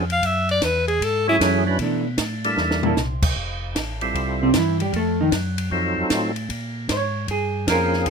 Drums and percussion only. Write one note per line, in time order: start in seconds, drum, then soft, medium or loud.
0.10 ride soft
0.23 kick soft
0.23 ride medium
0.49 ride soft
0.62 kick soft
0.62 snare medium
0.62 hi-hat pedal medium
0.62 ride medium
0.88 ride soft
1.01 kick soft
1.01 ride medium
1.40 kick soft
1.40 snare medium
1.40 hi-hat pedal medium
1.40 ride medium
1.79 kick soft
1.79 ride medium
2.18 kick soft
2.18 snare medium
2.18 hi-hat pedal medium
2.18 ride medium
2.44 ride soft
2.58 snare soft
2.71 snare medium
2.83 floor tom medium
2.97 snare medium
2.97 hi-hat pedal medium
3.22 kick medium
3.22 crash medium
3.36 kick soft
3.75 kick soft
3.75 snare medium
3.75 hi-hat pedal medium
3.75 ride medium
4.01 ride soft
4.15 kick soft
4.15 ride medium
4.54 kick soft
4.54 snare medium
4.54 hi-hat pedal medium
4.54 ride medium
4.80 ride medium
4.93 kick soft
4.93 ride medium
5.32 kick soft
5.32 snare medium
5.32 hi-hat pedal medium
5.32 ride medium
5.58 ride medium
5.71 kick soft
6.10 kick soft
6.10 snare medium
6.10 hi-hat pedal medium
6.10 ride medium
6.36 ride medium
6.50 kick soft
6.50 ride medium
6.89 kick soft
6.89 snare medium
6.89 hi-hat pedal medium
6.89 ride medium
7.28 kick soft
7.28 ride medium
7.67 kick soft
7.67 snare medium
7.67 hi-hat pedal medium
7.67 ride medium
7.93 snare soft
8.06 kick soft
8.06 ride medium